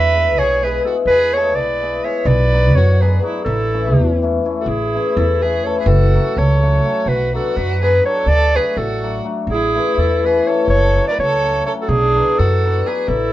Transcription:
Already playing: E2 B4 E5
0.13 G#3 B3 E4 G#4
0.36 B1 G#4 C#5
0.62 G#3 B3 E4 G#4 B4
0.84 G#3 B3 E4 F#4 G#4 A4
1.06 E2 G#4 B4
1.34 G#3 B3 E4 G#4 A4 C#5
1.56 B1 B4 D5
1.81 G#3 B3 E4 G#4
2.04 G#3 B3 E4 G#4 C#5 E5
2.25 B1 B4 D5
2.53 F#3 B3 D4 F#4
2.75 F#2 F#4 C#5
3.00 F#3 B3 D4 F#4 G#4 B4
3.22 F#3 B3 D4 F#4 G#4
3.26 E4
3.45 A1 E4 A4
3.73 E3 A3 C#4 E4
3.96 E2
4.22 E3 A3 C#4 E4
4.44 E3 A3 C#4 E4
4.60 F#4 A4
4.66 A1 E4 G#4
4.94 E3 A3 C#4 E4
5.17 E2 E4 A4
5.42 E3 A3 C#4 E4 G#4 B4
5.64 E3 A3 C#4 E4 A4 C#5
5.79 G#4 B4
5.86 F#1 F#4 A4
6.15 F#3 A3 C#4 F#4
6.37 C#2 A4 C#5
6.62 F#3 A3 C#4 F#4
6.84 F#3 A3 C#4 F#4
7.06 B1 F#4 B4
7.33 F#3 B3 D4 F#4 A4
7.56 F#2 F#4 B4
7.82 F#3 B3 D4 F#4 G#4 B4
8.03 F#3 B3 D4 F#4 A4 C#5
8.26 D2 A4 D5
8.54 F#3 A3 D4 F#4 G#4 B4
8.77 A1 F#4 A4
9.03 F#3 A3 D4 F#4
9.24 F#3 A3 D4 F#4
9.47 A1 E4 G#4
9.75 E3 A3 C#4 E4
9.98 E2 A4
10.02 E4
10.22 E3 A3 C#4 E4 B4
10.26 G#4
10.46 E3 A3 C#4 E4 A4 C#5
10.68 F#1 A4 C#5
10.95 F#3 A3 C#4 F#4
11.08 B4 D5
11.19 C#2 A4 C#5
11.43 F#3 A3 C#4 F#4
11.65 F#3 A3 C#4 F#4 A4 C#5
11.82 F#4 A4
11.89 B1 D4 G#4
12.15 F#3 B3 D4 F#4
12.39 F#2 F#4 A4
12.64 F#3 B3 D4 F#4
12.86 F#3 B3 D4 F#4 G#4 B4
13.08 A1 E4 A4

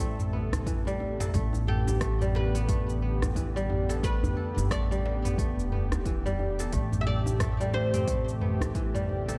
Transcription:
Already playing: A1 C3 E3 G3 A3 C4 E4 A4
0.00 A3, shaker
0.19 mid tom, shaker
0.32 B3, djembe tone
0.53 cross-stick, open hi-hat, djembe bass, shaker
0.66 E3, kick, mid tom, open hi-hat, shaker
0.85 G3, djembe tone, shaker
1.00 djembe tone
1.20 A4, mid tom, open hi-hat, djembe slap, shaker
1.33 A1 D3 A3 B3 G4, kick, open hi-hat, shaker
1.53 djembe tone, shaker
1.67 G4 A4, mid tom, djembe slap
1.87 djembe tone, shaker
2.01 A3, kick, cross-stick, open hi-hat, shaker
2.21 G3, mid tom, shaker
2.35 B4, djembe slap
2.55 B3, open hi-hat, shaker
2.69 A3, kick, mid tom, open hi-hat, shaker
2.89 shaker
3.02 B3
3.22 cross-stick, mid tom, open hi-hat, djembe bass, shaker
3.36 E3, kick, open hi-hat, shaker
3.56 G3, shaker
3.70 mid tom, djembe tone
3.89 A4, open hi-hat, djembe slap, shaker
4.03 A3 B4, kick, open hi-hat, shaker
4.23 mid tom, djembe tone, djembe bass, shaker
4.37 A4, djembe slap
4.57 G1, djembe tone, shaker
4.71 A1 A3 D5, kick, cross-stick, mid tom, open hi-hat, shaker
4.91 G3, shaker
5.06 djembe slap
5.25 B3, mid tom, open hi-hat, shaker
5.38 A3, kick, open hi-hat, shaker
5.58 E1, shaker
5.72 B3, mid tom, djembe tone
5.92 cross-stick, open hi-hat, djembe bass, shaker
6.05 E3, kick, open hi-hat, shaker
6.26 G3, mid tom, djembe tone, shaker
6.39 djembe tone
6.59 A4, open hi-hat, djembe slap, shaker
6.72 A1 C3 A3, kick, open hi-hat, shaker
6.92 mid tom, djembe tone, shaker
7.01 E5
7.06 A4 D5, djembe slap
7.26 djembe tone, shaker
7.40 A3, kick, cross-stick, mid tom, open hi-hat, shaker
7.60 G3, shaker
7.74 C5, djembe slap
7.94 C4, mid tom, open hi-hat, shaker
8.08 A3, kick, open hi-hat, shaker
8.29 shaker
8.41 B3, mid tom
8.61 cross-stick, open hi-hat, djembe bass, shaker
8.75 E3, kick, open hi-hat, shaker
8.95 G3, mid tom, shaker
9.09 djembe tone
9.28 A4, open hi-hat, djembe slap, shaker

